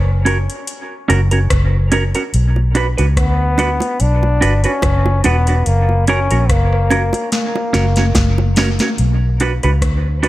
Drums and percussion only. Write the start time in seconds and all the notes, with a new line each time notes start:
0.26 closed hi-hat
0.50 closed hi-hat
0.67 closed hi-hat
1.10 closed hi-hat
1.31 closed hi-hat
1.50 kick, cross-stick, closed hi-hat
1.92 closed hi-hat
2.15 closed hi-hat
2.34 closed hi-hat
2.56 high bongo
2.75 closed hi-hat
2.98 closed hi-hat
3.17 kick, cross-stick, closed hi-hat
3.58 closed hi-hat, low bongo
3.80 closed hi-hat, high bongo
4.00 closed hi-hat
4.23 high bongo
4.42 closed hi-hat
4.64 closed hi-hat
4.82 kick, cross-stick, closed hi-hat, high bongo
5.06 high bongo
5.24 closed hi-hat, low bongo
5.47 closed hi-hat
5.66 closed hi-hat
5.89 high bongo
6.07 closed hi-hat
6.31 closed hi-hat
6.49 kick, cross-stick, closed hi-hat
6.73 cross-stick
6.91 closed hi-hat, low bongo
7.13 closed hi-hat, high bongo
7.32 snare, closed hi-hat
7.55 high bongo
7.74 snare, closed hi-hat, high bongo
7.96 snare, closed hi-hat
8.15 kick, snare, closed hi-hat, high bongo
8.38 high bongo
8.56 snare, open hi-hat, low bongo
8.79 snare, closed hi-hat
8.98 closed hi-hat
9.40 closed hi-hat
9.63 closed hi-hat
9.82 kick, cross-stick, closed hi-hat
10.23 closed hi-hat